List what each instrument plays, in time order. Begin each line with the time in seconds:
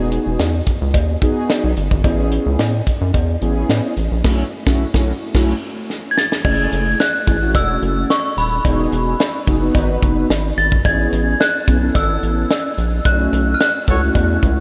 Already playing: analog synth bass E1, analog polysynth B3 D#4 F#4 G#4
0.12 closed hi-hat
0.26 analog synth bass E1
0.39 analog synth bass E2, snare, closed hi-hat, cowbell
0.67 kick, closed hi-hat
0.81 analog synth bass C#2
0.94 analog synth bass D#2, kick, closed hi-hat, cowbell
1.22 analog polysynth B3 D#4 F#4 G#4, kick, closed hi-hat
1.50 snare, closed hi-hat, cowbell
1.64 analog synth bass B1
1.77 analog synth bass G1, closed hi-hat
1.91 analog synth bass G#1, kick
2.04 analog synth bass A1, analog polysynth B3 C#4 E4 G#4, kick, closed hi-hat, cowbell
2.31 closed hi-hat
2.46 analog synth bass C#2
2.59 analog synth bass A2, snare, closed hi-hat, cowbell
2.87 kick, closed hi-hat
3.01 analog synth bass F#2
3.14 analog synth bass E2, kick, closed hi-hat, cowbell
3.42 analog synth bass A1, analog polysynth B3 C#4 E4 G#4, closed hi-hat
3.69 analog synth bass A2, snare, closed hi-hat, cowbell
3.97 analog synth bass A1, closed hi-hat
4.11 analog synth bass A#1
4.24 analog synth bass B1, analog polysynth A3 C#4 E4 F#4, kick, snare, crash
4.66 analog synth bass B1, analog polysynth A3 C#4 E4 F#4, kick, snare
4.94 analog synth bass B1, analog polysynth A3 C#4 E4 F#4, kick, snare
5.34 analog synth bass B1, analog polysynth A3 C#4 E4 F#4, kick, snare, crash
5.90 snare
6.11 synth bell G#6
6.17 synth bell A6, snare
6.32 snare
6.44 analog synth bass F#1, analog polysynth A3 C#4 E4 G#4, synth bell G#6, kick, crash, cowbell
6.72 analog synth bass F#1, closed hi-hat
7.00 synth bell F#6, snare, closed hi-hat, cowbell
7.27 analog synth bass A1, analog polysynth A3 C#4 E4 G#4, kick, closed hi-hat
7.41 analog polysynth A3 C#4 E4 F#4
7.55 analog synth bass E1, synth bell E6, kick, closed hi-hat, cowbell
7.82 analog synth bass F#1, closed hi-hat
8.10 synth bell C#6, snare, closed hi-hat, cowbell
8.37 analog synth bass D#1, synth bell B5, closed hi-hat
8.64 analog synth bass E1, analog polysynth B3 D#4 F#4 G#4, kick, closed hi-hat, cowbell
8.92 analog synth bass E1, closed hi-hat
9.20 snare, closed hi-hat, cowbell
9.47 analog synth bass F#1, analog polysynth B3 D#4 F#4 G#4, kick, closed hi-hat
9.61 analog polysynth B3 D#4 F#4 B4
9.75 analog synth bass G#1, kick, closed hi-hat, cowbell
10.02 analog synth bass F#1, kick, closed hi-hat
10.30 analog synth bass G#1, snare, closed hi-hat, cowbell
10.57 analog synth bass G#1, synth bell A6, closed hi-hat
10.72 kick
10.84 analog synth bass A1, analog polysynth B3 C#4 E4 G#4, synth bell G#6, kick, closed hi-hat, cowbell
11.12 analog synth bass A1, closed hi-hat
11.40 synth bell F#6, snare, closed hi-hat, cowbell
11.67 analog synth bass B1, analog polysynth B3 C#4 E4 G#4, kick, closed hi-hat
11.82 analog polysynth B3 C#4 E4 A4
11.95 analog synth bass G#1, synth bell E6, kick, closed hi-hat, cowbell
12.23 analog synth bass A1, closed hi-hat
12.51 snare, closed hi-hat, cowbell
12.78 analog synth bass A#1, closed hi-hat
13.05 analog synth bass B1, analog polysynth A3 C#4 D#4 F#4, synth bell F#6, kick, closed hi-hat, cowbell
13.12 analog polysynth E4
13.32 analog synth bass B1, closed hi-hat
13.54 synth bell F6
13.60 synth bell F#6, snare, closed hi-hat, cowbell
13.87 analog synth bass C#2, analog polysynth A3 C#4 E4 A4, horn section F#4 A4 C#5, kick, closed hi-hat
14.02 analog polysynth A3 C#4 E4 F#4
14.15 analog synth bass E2, kick, closed hi-hat, cowbell
14.43 analog synth bass C#2, kick, closed hi-hat